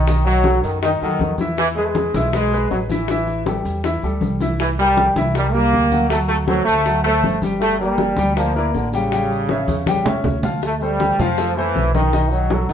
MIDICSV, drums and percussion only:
0, 0, Header, 1, 2, 480
1, 0, Start_track
1, 0, Tempo, 376648
1, 96, Time_signature, 4, 2, 24, 8
1, 16224, End_track
2, 0, Start_track
2, 0, Title_t, "Drums"
2, 90, Note_on_c, 9, 70, 83
2, 93, Note_on_c, 9, 63, 29
2, 96, Note_on_c, 9, 60, 69
2, 217, Note_off_c, 9, 70, 0
2, 220, Note_off_c, 9, 63, 0
2, 223, Note_off_c, 9, 60, 0
2, 328, Note_on_c, 9, 63, 34
2, 330, Note_on_c, 9, 60, 35
2, 334, Note_on_c, 9, 70, 25
2, 455, Note_off_c, 9, 63, 0
2, 457, Note_off_c, 9, 60, 0
2, 462, Note_off_c, 9, 70, 0
2, 561, Note_on_c, 9, 63, 89
2, 570, Note_on_c, 9, 60, 58
2, 579, Note_on_c, 9, 70, 24
2, 688, Note_off_c, 9, 63, 0
2, 698, Note_off_c, 9, 60, 0
2, 707, Note_off_c, 9, 70, 0
2, 804, Note_on_c, 9, 63, 32
2, 814, Note_on_c, 9, 70, 67
2, 932, Note_off_c, 9, 63, 0
2, 941, Note_off_c, 9, 70, 0
2, 1043, Note_on_c, 9, 63, 34
2, 1052, Note_on_c, 9, 70, 75
2, 1054, Note_on_c, 9, 60, 71
2, 1171, Note_off_c, 9, 63, 0
2, 1180, Note_off_c, 9, 70, 0
2, 1181, Note_off_c, 9, 60, 0
2, 1285, Note_on_c, 9, 63, 29
2, 1293, Note_on_c, 9, 70, 27
2, 1300, Note_on_c, 9, 60, 32
2, 1412, Note_off_c, 9, 63, 0
2, 1421, Note_off_c, 9, 70, 0
2, 1427, Note_off_c, 9, 60, 0
2, 1521, Note_on_c, 9, 63, 85
2, 1534, Note_on_c, 9, 70, 25
2, 1541, Note_on_c, 9, 60, 28
2, 1541, Note_on_c, 9, 61, 76
2, 1648, Note_off_c, 9, 63, 0
2, 1661, Note_off_c, 9, 70, 0
2, 1668, Note_off_c, 9, 60, 0
2, 1668, Note_off_c, 9, 61, 0
2, 1760, Note_on_c, 9, 63, 79
2, 1767, Note_on_c, 9, 70, 60
2, 1780, Note_on_c, 9, 60, 33
2, 1888, Note_off_c, 9, 63, 0
2, 1895, Note_off_c, 9, 70, 0
2, 1908, Note_off_c, 9, 60, 0
2, 2007, Note_on_c, 9, 63, 29
2, 2010, Note_on_c, 9, 70, 86
2, 2017, Note_on_c, 9, 60, 70
2, 2134, Note_off_c, 9, 63, 0
2, 2137, Note_off_c, 9, 70, 0
2, 2145, Note_off_c, 9, 60, 0
2, 2250, Note_on_c, 9, 70, 26
2, 2255, Note_on_c, 9, 63, 34
2, 2260, Note_on_c, 9, 60, 32
2, 2378, Note_off_c, 9, 70, 0
2, 2383, Note_off_c, 9, 63, 0
2, 2387, Note_off_c, 9, 60, 0
2, 2485, Note_on_c, 9, 63, 92
2, 2492, Note_on_c, 9, 70, 27
2, 2498, Note_on_c, 9, 60, 55
2, 2613, Note_off_c, 9, 63, 0
2, 2620, Note_off_c, 9, 70, 0
2, 2625, Note_off_c, 9, 60, 0
2, 2732, Note_on_c, 9, 63, 88
2, 2733, Note_on_c, 9, 70, 73
2, 2860, Note_off_c, 9, 63, 0
2, 2861, Note_off_c, 9, 70, 0
2, 2969, Note_on_c, 9, 63, 35
2, 2969, Note_on_c, 9, 70, 82
2, 2974, Note_on_c, 9, 60, 72
2, 3097, Note_off_c, 9, 63, 0
2, 3097, Note_off_c, 9, 70, 0
2, 3101, Note_off_c, 9, 60, 0
2, 3212, Note_on_c, 9, 63, 31
2, 3216, Note_on_c, 9, 60, 35
2, 3218, Note_on_c, 9, 70, 29
2, 3339, Note_off_c, 9, 63, 0
2, 3344, Note_off_c, 9, 60, 0
2, 3346, Note_off_c, 9, 70, 0
2, 3447, Note_on_c, 9, 63, 37
2, 3452, Note_on_c, 9, 60, 29
2, 3452, Note_on_c, 9, 61, 76
2, 3452, Note_on_c, 9, 70, 25
2, 3575, Note_off_c, 9, 63, 0
2, 3579, Note_off_c, 9, 60, 0
2, 3579, Note_off_c, 9, 61, 0
2, 3580, Note_off_c, 9, 70, 0
2, 3689, Note_on_c, 9, 60, 32
2, 3689, Note_on_c, 9, 63, 71
2, 3696, Note_on_c, 9, 70, 65
2, 3816, Note_off_c, 9, 63, 0
2, 3817, Note_off_c, 9, 60, 0
2, 3823, Note_off_c, 9, 70, 0
2, 3928, Note_on_c, 9, 60, 68
2, 3932, Note_on_c, 9, 70, 77
2, 3935, Note_on_c, 9, 63, 32
2, 4055, Note_off_c, 9, 60, 0
2, 4059, Note_off_c, 9, 70, 0
2, 4062, Note_off_c, 9, 63, 0
2, 4167, Note_on_c, 9, 60, 35
2, 4169, Note_on_c, 9, 63, 36
2, 4172, Note_on_c, 9, 70, 25
2, 4294, Note_off_c, 9, 60, 0
2, 4297, Note_off_c, 9, 63, 0
2, 4300, Note_off_c, 9, 70, 0
2, 4411, Note_on_c, 9, 60, 56
2, 4414, Note_on_c, 9, 70, 27
2, 4415, Note_on_c, 9, 63, 90
2, 4539, Note_off_c, 9, 60, 0
2, 4541, Note_off_c, 9, 70, 0
2, 4542, Note_off_c, 9, 63, 0
2, 4651, Note_on_c, 9, 63, 31
2, 4654, Note_on_c, 9, 70, 71
2, 4779, Note_off_c, 9, 63, 0
2, 4781, Note_off_c, 9, 70, 0
2, 4895, Note_on_c, 9, 60, 70
2, 4895, Note_on_c, 9, 63, 34
2, 4895, Note_on_c, 9, 70, 77
2, 5022, Note_off_c, 9, 60, 0
2, 5022, Note_off_c, 9, 63, 0
2, 5022, Note_off_c, 9, 70, 0
2, 5133, Note_on_c, 9, 63, 30
2, 5139, Note_on_c, 9, 60, 33
2, 5144, Note_on_c, 9, 70, 27
2, 5260, Note_off_c, 9, 63, 0
2, 5266, Note_off_c, 9, 60, 0
2, 5271, Note_off_c, 9, 70, 0
2, 5366, Note_on_c, 9, 63, 82
2, 5378, Note_on_c, 9, 60, 28
2, 5378, Note_on_c, 9, 61, 74
2, 5383, Note_on_c, 9, 70, 27
2, 5493, Note_off_c, 9, 63, 0
2, 5506, Note_off_c, 9, 60, 0
2, 5506, Note_off_c, 9, 61, 0
2, 5510, Note_off_c, 9, 70, 0
2, 5613, Note_on_c, 9, 63, 79
2, 5620, Note_on_c, 9, 70, 63
2, 5622, Note_on_c, 9, 60, 31
2, 5740, Note_off_c, 9, 63, 0
2, 5747, Note_off_c, 9, 70, 0
2, 5749, Note_off_c, 9, 60, 0
2, 5852, Note_on_c, 9, 63, 29
2, 5861, Note_on_c, 9, 60, 71
2, 5861, Note_on_c, 9, 70, 78
2, 5980, Note_off_c, 9, 63, 0
2, 5988, Note_off_c, 9, 60, 0
2, 5989, Note_off_c, 9, 70, 0
2, 6094, Note_on_c, 9, 63, 34
2, 6101, Note_on_c, 9, 70, 24
2, 6103, Note_on_c, 9, 60, 34
2, 6222, Note_off_c, 9, 63, 0
2, 6229, Note_off_c, 9, 70, 0
2, 6231, Note_off_c, 9, 60, 0
2, 6338, Note_on_c, 9, 63, 83
2, 6340, Note_on_c, 9, 60, 53
2, 6344, Note_on_c, 9, 70, 27
2, 6466, Note_off_c, 9, 63, 0
2, 6467, Note_off_c, 9, 60, 0
2, 6471, Note_off_c, 9, 70, 0
2, 6575, Note_on_c, 9, 70, 69
2, 6578, Note_on_c, 9, 63, 89
2, 6703, Note_off_c, 9, 70, 0
2, 6705, Note_off_c, 9, 63, 0
2, 6819, Note_on_c, 9, 70, 78
2, 6820, Note_on_c, 9, 60, 69
2, 6823, Note_on_c, 9, 63, 34
2, 6946, Note_off_c, 9, 70, 0
2, 6948, Note_off_c, 9, 60, 0
2, 6950, Note_off_c, 9, 63, 0
2, 7062, Note_on_c, 9, 70, 27
2, 7063, Note_on_c, 9, 63, 29
2, 7066, Note_on_c, 9, 60, 33
2, 7190, Note_off_c, 9, 70, 0
2, 7191, Note_off_c, 9, 63, 0
2, 7193, Note_off_c, 9, 60, 0
2, 7298, Note_on_c, 9, 70, 29
2, 7304, Note_on_c, 9, 63, 36
2, 7306, Note_on_c, 9, 60, 31
2, 7306, Note_on_c, 9, 61, 68
2, 7426, Note_off_c, 9, 70, 0
2, 7431, Note_off_c, 9, 63, 0
2, 7433, Note_off_c, 9, 60, 0
2, 7433, Note_off_c, 9, 61, 0
2, 7539, Note_on_c, 9, 70, 62
2, 7542, Note_on_c, 9, 63, 68
2, 7544, Note_on_c, 9, 60, 31
2, 7666, Note_off_c, 9, 70, 0
2, 7669, Note_off_c, 9, 63, 0
2, 7671, Note_off_c, 9, 60, 0
2, 7775, Note_on_c, 9, 63, 32
2, 7778, Note_on_c, 9, 60, 66
2, 7781, Note_on_c, 9, 70, 82
2, 7903, Note_off_c, 9, 63, 0
2, 7906, Note_off_c, 9, 60, 0
2, 7909, Note_off_c, 9, 70, 0
2, 8020, Note_on_c, 9, 60, 36
2, 8020, Note_on_c, 9, 63, 37
2, 8031, Note_on_c, 9, 70, 25
2, 8148, Note_off_c, 9, 60, 0
2, 8148, Note_off_c, 9, 63, 0
2, 8159, Note_off_c, 9, 70, 0
2, 8252, Note_on_c, 9, 60, 58
2, 8255, Note_on_c, 9, 63, 85
2, 8267, Note_on_c, 9, 70, 27
2, 8380, Note_off_c, 9, 60, 0
2, 8382, Note_off_c, 9, 63, 0
2, 8394, Note_off_c, 9, 70, 0
2, 8497, Note_on_c, 9, 63, 34
2, 8505, Note_on_c, 9, 70, 64
2, 8625, Note_off_c, 9, 63, 0
2, 8632, Note_off_c, 9, 70, 0
2, 8739, Note_on_c, 9, 63, 35
2, 8741, Note_on_c, 9, 60, 65
2, 8743, Note_on_c, 9, 70, 74
2, 8866, Note_off_c, 9, 63, 0
2, 8868, Note_off_c, 9, 60, 0
2, 8871, Note_off_c, 9, 70, 0
2, 8981, Note_on_c, 9, 63, 30
2, 8985, Note_on_c, 9, 60, 32
2, 8988, Note_on_c, 9, 70, 29
2, 9109, Note_off_c, 9, 63, 0
2, 9113, Note_off_c, 9, 60, 0
2, 9115, Note_off_c, 9, 70, 0
2, 9221, Note_on_c, 9, 63, 89
2, 9225, Note_on_c, 9, 60, 31
2, 9225, Note_on_c, 9, 61, 75
2, 9225, Note_on_c, 9, 70, 27
2, 9348, Note_off_c, 9, 63, 0
2, 9352, Note_off_c, 9, 60, 0
2, 9352, Note_off_c, 9, 61, 0
2, 9352, Note_off_c, 9, 70, 0
2, 9456, Note_on_c, 9, 63, 81
2, 9464, Note_on_c, 9, 70, 66
2, 9465, Note_on_c, 9, 60, 35
2, 9583, Note_off_c, 9, 63, 0
2, 9592, Note_off_c, 9, 60, 0
2, 9592, Note_off_c, 9, 70, 0
2, 9693, Note_on_c, 9, 63, 30
2, 9702, Note_on_c, 9, 70, 84
2, 9708, Note_on_c, 9, 60, 67
2, 9820, Note_off_c, 9, 63, 0
2, 9830, Note_off_c, 9, 70, 0
2, 9836, Note_off_c, 9, 60, 0
2, 9928, Note_on_c, 9, 63, 37
2, 9947, Note_on_c, 9, 70, 26
2, 9954, Note_on_c, 9, 60, 33
2, 10055, Note_off_c, 9, 63, 0
2, 10074, Note_off_c, 9, 70, 0
2, 10081, Note_off_c, 9, 60, 0
2, 10170, Note_on_c, 9, 63, 84
2, 10183, Note_on_c, 9, 60, 56
2, 10185, Note_on_c, 9, 70, 25
2, 10298, Note_off_c, 9, 63, 0
2, 10310, Note_off_c, 9, 60, 0
2, 10312, Note_off_c, 9, 70, 0
2, 10407, Note_on_c, 9, 63, 93
2, 10425, Note_on_c, 9, 70, 67
2, 10534, Note_off_c, 9, 63, 0
2, 10552, Note_off_c, 9, 70, 0
2, 10651, Note_on_c, 9, 63, 31
2, 10666, Note_on_c, 9, 60, 69
2, 10669, Note_on_c, 9, 70, 81
2, 10778, Note_off_c, 9, 63, 0
2, 10793, Note_off_c, 9, 60, 0
2, 10797, Note_off_c, 9, 70, 0
2, 10897, Note_on_c, 9, 63, 30
2, 10906, Note_on_c, 9, 70, 29
2, 10910, Note_on_c, 9, 60, 30
2, 11024, Note_off_c, 9, 63, 0
2, 11034, Note_off_c, 9, 70, 0
2, 11038, Note_off_c, 9, 60, 0
2, 11135, Note_on_c, 9, 63, 37
2, 11143, Note_on_c, 9, 70, 28
2, 11144, Note_on_c, 9, 60, 28
2, 11144, Note_on_c, 9, 61, 74
2, 11262, Note_off_c, 9, 63, 0
2, 11270, Note_off_c, 9, 70, 0
2, 11272, Note_off_c, 9, 60, 0
2, 11272, Note_off_c, 9, 61, 0
2, 11382, Note_on_c, 9, 70, 64
2, 11387, Note_on_c, 9, 60, 32
2, 11510, Note_off_c, 9, 70, 0
2, 11514, Note_off_c, 9, 60, 0
2, 11620, Note_on_c, 9, 63, 30
2, 11622, Note_on_c, 9, 70, 82
2, 11624, Note_on_c, 9, 60, 66
2, 11748, Note_off_c, 9, 63, 0
2, 11749, Note_off_c, 9, 70, 0
2, 11751, Note_off_c, 9, 60, 0
2, 11858, Note_on_c, 9, 63, 35
2, 11859, Note_on_c, 9, 60, 36
2, 11869, Note_on_c, 9, 70, 26
2, 11985, Note_off_c, 9, 63, 0
2, 11986, Note_off_c, 9, 60, 0
2, 11996, Note_off_c, 9, 70, 0
2, 12093, Note_on_c, 9, 63, 87
2, 12095, Note_on_c, 9, 60, 57
2, 12108, Note_on_c, 9, 70, 26
2, 12220, Note_off_c, 9, 63, 0
2, 12223, Note_off_c, 9, 60, 0
2, 12236, Note_off_c, 9, 70, 0
2, 12337, Note_on_c, 9, 63, 89
2, 12344, Note_on_c, 9, 70, 68
2, 12464, Note_off_c, 9, 63, 0
2, 12471, Note_off_c, 9, 70, 0
2, 12570, Note_on_c, 9, 63, 97
2, 12578, Note_on_c, 9, 60, 74
2, 12580, Note_on_c, 9, 70, 83
2, 12698, Note_off_c, 9, 63, 0
2, 12706, Note_off_c, 9, 60, 0
2, 12707, Note_off_c, 9, 70, 0
2, 12816, Note_on_c, 9, 64, 91
2, 12819, Note_on_c, 9, 60, 34
2, 12819, Note_on_c, 9, 70, 28
2, 12943, Note_off_c, 9, 64, 0
2, 12946, Note_off_c, 9, 60, 0
2, 12947, Note_off_c, 9, 70, 0
2, 13051, Note_on_c, 9, 64, 98
2, 13060, Note_on_c, 9, 60, 30
2, 13060, Note_on_c, 9, 61, 76
2, 13060, Note_on_c, 9, 70, 27
2, 13179, Note_off_c, 9, 64, 0
2, 13187, Note_off_c, 9, 60, 0
2, 13187, Note_off_c, 9, 61, 0
2, 13187, Note_off_c, 9, 70, 0
2, 13292, Note_on_c, 9, 70, 59
2, 13294, Note_on_c, 9, 64, 77
2, 13309, Note_on_c, 9, 60, 33
2, 13420, Note_off_c, 9, 70, 0
2, 13422, Note_off_c, 9, 64, 0
2, 13437, Note_off_c, 9, 60, 0
2, 13536, Note_on_c, 9, 70, 82
2, 13542, Note_on_c, 9, 63, 30
2, 13546, Note_on_c, 9, 60, 65
2, 13664, Note_off_c, 9, 70, 0
2, 13670, Note_off_c, 9, 63, 0
2, 13673, Note_off_c, 9, 60, 0
2, 13778, Note_on_c, 9, 70, 26
2, 13781, Note_on_c, 9, 63, 39
2, 13905, Note_off_c, 9, 70, 0
2, 13908, Note_off_c, 9, 63, 0
2, 14018, Note_on_c, 9, 63, 87
2, 14020, Note_on_c, 9, 70, 24
2, 14026, Note_on_c, 9, 60, 58
2, 14145, Note_off_c, 9, 63, 0
2, 14147, Note_off_c, 9, 70, 0
2, 14154, Note_off_c, 9, 60, 0
2, 14259, Note_on_c, 9, 70, 65
2, 14263, Note_on_c, 9, 60, 34
2, 14265, Note_on_c, 9, 63, 34
2, 14265, Note_on_c, 9, 64, 85
2, 14386, Note_off_c, 9, 70, 0
2, 14391, Note_off_c, 9, 60, 0
2, 14392, Note_off_c, 9, 63, 0
2, 14392, Note_off_c, 9, 64, 0
2, 14501, Note_on_c, 9, 70, 87
2, 14503, Note_on_c, 9, 60, 73
2, 14508, Note_on_c, 9, 63, 35
2, 14628, Note_off_c, 9, 70, 0
2, 14630, Note_off_c, 9, 60, 0
2, 14636, Note_off_c, 9, 63, 0
2, 14744, Note_on_c, 9, 63, 31
2, 14747, Note_on_c, 9, 60, 34
2, 14750, Note_on_c, 9, 70, 28
2, 14872, Note_off_c, 9, 63, 0
2, 14875, Note_off_c, 9, 60, 0
2, 14877, Note_off_c, 9, 70, 0
2, 14982, Note_on_c, 9, 60, 31
2, 14982, Note_on_c, 9, 61, 80
2, 14982, Note_on_c, 9, 63, 85
2, 14987, Note_on_c, 9, 70, 27
2, 15109, Note_off_c, 9, 60, 0
2, 15109, Note_off_c, 9, 61, 0
2, 15109, Note_off_c, 9, 63, 0
2, 15115, Note_off_c, 9, 70, 0
2, 15221, Note_on_c, 9, 70, 60
2, 15226, Note_on_c, 9, 63, 88
2, 15228, Note_on_c, 9, 60, 34
2, 15348, Note_off_c, 9, 70, 0
2, 15353, Note_off_c, 9, 63, 0
2, 15356, Note_off_c, 9, 60, 0
2, 15458, Note_on_c, 9, 70, 84
2, 15462, Note_on_c, 9, 60, 62
2, 15467, Note_on_c, 9, 63, 32
2, 15585, Note_off_c, 9, 70, 0
2, 15589, Note_off_c, 9, 60, 0
2, 15595, Note_off_c, 9, 63, 0
2, 15695, Note_on_c, 9, 70, 24
2, 15701, Note_on_c, 9, 63, 35
2, 15822, Note_off_c, 9, 70, 0
2, 15829, Note_off_c, 9, 63, 0
2, 15934, Note_on_c, 9, 63, 96
2, 15938, Note_on_c, 9, 70, 25
2, 15944, Note_on_c, 9, 60, 51
2, 16061, Note_off_c, 9, 63, 0
2, 16065, Note_off_c, 9, 70, 0
2, 16072, Note_off_c, 9, 60, 0
2, 16174, Note_on_c, 9, 63, 36
2, 16177, Note_on_c, 9, 70, 72
2, 16181, Note_on_c, 9, 60, 31
2, 16224, Note_off_c, 9, 60, 0
2, 16224, Note_off_c, 9, 63, 0
2, 16224, Note_off_c, 9, 70, 0
2, 16224, End_track
0, 0, End_of_file